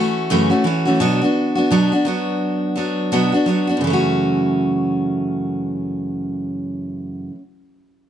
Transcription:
Already playing: E3 A3 C#4 F#4
0.30 F#2 C#3 E3 A3 C#4 F#4
0.50 E3 A3 C#4 F#4
0.64 E3 A3 C#4 F#4
0.85 E3 A3 C#4 F#4
1.00 B2 F#3 B3 D4 F#4
1.21 B3 D4 F#4
1.55 B3 D4 F#4
1.71 B2 F#3 B3 D4 F#4
1.92 B3 D4 F#4
2.05 F#3 B3 D4 F#4
2.76 F#3 B3 D4 F#4
3.12 B2 F#3 B3 D4 F#4
3.32 B3 D4 F#4
3.46 F#3 B3 D4 F#4
3.67 B3 D4 F#4
3.77 F#2 C#3
3.84 E3 A3
3.90 C#4 F#4

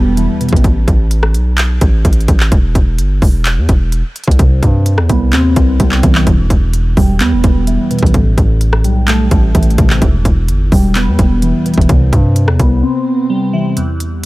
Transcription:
Already playing: E1 E2 G3 B3 G4 A4
0.17 E3, closed hi-hat
0.41 B2, closed hi-hat
0.49 A1, kick, closed hi-hat
0.56 closed hi-hat
0.64 kick, closed hi-hat
0.88 A1, kick, closed hi-hat
1.11 closed hi-hat
1.23 cross-stick
1.34 B1, closed hi-hat
1.58 clap, closed hi-hat
1.81 A1, kick, closed hi-hat
2.05 A1, kick, closed hi-hat
2.13 closed hi-hat
2.20 closed hi-hat
2.28 A1, kick, closed hi-hat
2.40 clap
2.52 E1, kick, closed hi-hat
2.75 E1, kick, closed hi-hat
2.98 G1, closed hi-hat
3.22 E1, kick, open hi-hat
3.45 clap, closed hi-hat
3.57 E2
3.69 E1, kick, closed hi-hat
3.92 closed hi-hat
4.16 closed hi-hat
4.24 C2, kick, closed hi-hat
4.31 closed hi-hat
4.39 C3, kick, closed hi-hat
4.63 G2, kick, closed hi-hat
4.86 closed hi-hat
4.98 E2, cross-stick
5.09 C2 B3, kick, closed hi-hat
5.33 D#2 C4, clap, closed hi-hat
5.56 C2, kick, closed hi-hat
5.80 C2 G3, kick, closed hi-hat
5.92 clap
6.03 C2 E3, kick, closed hi-hat
6.15 clap
6.27 E1 E2, kick, closed hi-hat
6.50 E1, kick, closed hi-hat
6.73 closed hi-hat
6.97 E1 G3, kick, open hi-hat
7.20 E2 B3, clap, closed hi-hat
7.32 E1
7.44 E1, kick, closed hi-hat
7.67 E3, closed hi-hat
7.91 B2, closed hi-hat
7.99 A1, kick, closed hi-hat
8.06 closed hi-hat
8.14 A2, kick, closed hi-hat
8.38 A1, kick, closed hi-hat
8.61 closed hi-hat
8.73 cross-stick
8.84 B1 G3, closed hi-hat
9.08 A3, clap, closed hi-hat
9.31 A1, kick, closed hi-hat
9.55 A1 E3, kick, closed hi-hat
9.63 closed hi-hat
9.70 closed hi-hat
9.78 A1 C3, kick, closed hi-hat
9.90 clap
10.02 E1 E2, kick, closed hi-hat
10.25 E1, kick, closed hi-hat
10.48 G1, closed hi-hat
10.72 E1 G3, kick, open hi-hat
10.95 B3, clap, closed hi-hat
11.07 E2
11.19 E1, kick, closed hi-hat
11.42 E3, closed hi-hat
11.66 B2, closed hi-hat
11.74 E1, kick, closed hi-hat
11.81 closed hi-hat
11.89 C2 C3, kick, closed hi-hat
12.13 G2, kick, closed hi-hat
12.36 closed hi-hat
12.48 E2, cross-stick
12.59 C2 B3, kick, closed hi-hat
12.83 C4
13.30 G3
13.53 E3
13.77 E2 E3 G3 B3 G4, closed hi-hat
14.00 closed hi-hat

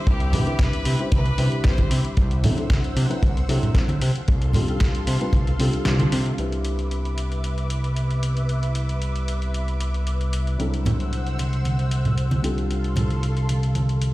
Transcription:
Already playing: G3 C4 D4 E4 C5 E5 B5 D6
0.07 C2 G4, kick, closed hi-hat
0.20 closed hi-hat
0.32 C3 G3 C4 D4 E4 B4, open hi-hat, high conga, low conga
0.46 C2 G3 C4 D4 E4 B4, closed hi-hat
0.59 C2 B4, kick, snare, closed hi-hat
0.73 closed hi-hat
0.85 C3, open hi-hat
0.99 G3 C4 D4 E4 C5, closed hi-hat
1.12 C2 B4, kick, closed hi-hat, high conga
1.26 closed hi-hat
1.38 C3 G3 C4 D4 E4 B4, open hi-hat
1.52 C2, closed hi-hat
1.64 C2 C5, kick, snare, closed hi-hat
1.78 kick, closed hi-hat, high conga
1.91 C3, open hi-hat
2.05 closed hi-hat
2.17 C2 C5 F#5 E6, kick, closed hi-hat
2.31 closed hi-hat
2.43 C3 F#3 C4 D4 E4 A4, open hi-hat, high conga, low conga
2.57 F#3 C4 D4 E4 A4, closed hi-hat
2.70 C2, kick, snare, closed hi-hat
2.84 closed hi-hat
2.96 C3, open hi-hat
3.09 F#3 C4 D4 E4 B4, closed hi-hat
3.23 C2, kick, closed hi-hat, high conga
3.37 closed hi-hat
3.48 C3 F#3 C4 D4 E4 A4, open hi-hat
3.63 C2, closed hi-hat, low conga
3.75 C2, kick, snare, closed hi-hat
3.89 closed hi-hat, high conga
4.01 C3 A4 F5 C6, open hi-hat
4.15 closed hi-hat
4.28 C2, kick, closed hi-hat
4.42 closed hi-hat
4.53 C3 G3 C4 D4 F4 A4, open hi-hat, high conga, low conga
4.68 C2 G3 C4 D4 F4 A4, closed hi-hat
4.80 C2, kick, snare, closed hi-hat
4.95 closed hi-hat
5.07 C3, open hi-hat
5.20 G3 C4 D4 F4 B4, closed hi-hat
5.33 C2, kick, closed hi-hat, high conga
5.47 closed hi-hat
5.58 C3 G3 C4 D4 F4 A4, open hi-hat
5.73 C2, closed hi-hat
5.85 C2, snare, closed hi-hat
5.99 closed hi-hat, high conga
6.12 C3, open hi-hat
6.26 closed hi-hat
6.37 C2 G3 C4 D4 E4 B4 E5 D6, closed hi-hat
6.52 closed hi-hat
6.65 closed hi-hat
6.79 closed hi-hat
6.91 closed hi-hat
7.05 closed hi-hat
7.18 closed hi-hat
7.32 closed hi-hat
7.44 closed hi-hat
7.58 closed hi-hat
7.70 closed hi-hat
7.84 closed hi-hat
7.96 closed hi-hat
8.11 closed hi-hat
8.23 closed hi-hat
8.37 closed hi-hat
8.49 closed hi-hat
8.63 closed hi-hat
8.75 closed hi-hat
8.89 closed hi-hat
9.02 closed hi-hat
9.16 closed hi-hat
9.28 closed hi-hat
9.42 closed hi-hat
9.54 closed hi-hat
9.68 closed hi-hat
9.80 closed hi-hat
9.94 closed hi-hat
10.07 closed hi-hat
10.21 closed hi-hat
10.33 closed hi-hat
10.47 closed hi-hat
10.58 C2 F#3 C4 D4 E4 A4 C5 F#5 E6, closed hi-hat
10.74 closed hi-hat
10.86 closed hi-hat, muted conga, high conga, low conga
11.00 closed hi-hat
11.13 closed hi-hat
11.27 closed hi-hat
11.39 closed hi-hat, muted conga
11.53 closed hi-hat
11.65 closed hi-hat, high conga
11.79 closed hi-hat
11.91 closed hi-hat
12.05 closed hi-hat, low conga
12.18 closed hi-hat
12.31 closed hi-hat, high conga
12.42 C2 G3 C4 D4 F4 A4 F5 C6, closed hi-hat
12.58 closed hi-hat
12.71 closed hi-hat
12.84 closed hi-hat
12.96 closed hi-hat, muted conga, high conga, low conga
13.10 closed hi-hat
13.23 closed hi-hat
13.37 closed hi-hat
13.49 closed hi-hat, muted conga
13.63 closed hi-hat
13.75 closed hi-hat, high conga
13.89 closed hi-hat
14.02 closed hi-hat

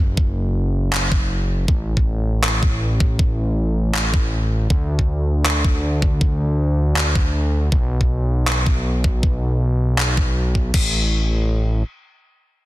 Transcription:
Already playing: F#1
0.17 kick
0.93 clap
1.12 kick
1.68 A1, kick
1.97 kick
2.44 clap
2.63 kick
3.00 kick
3.19 kick
3.95 clap
4.14 kick
4.70 D2, kick
4.99 kick
5.46 clap
5.65 kick
6.02 kick
6.21 kick
6.97 clap
7.15 kick
7.72 B1, kick
8.01 kick
8.48 clap
8.66 kick
9.04 kick
9.23 kick
9.99 clap
10.17 kick
10.55 kick
10.74 A1, kick, crash

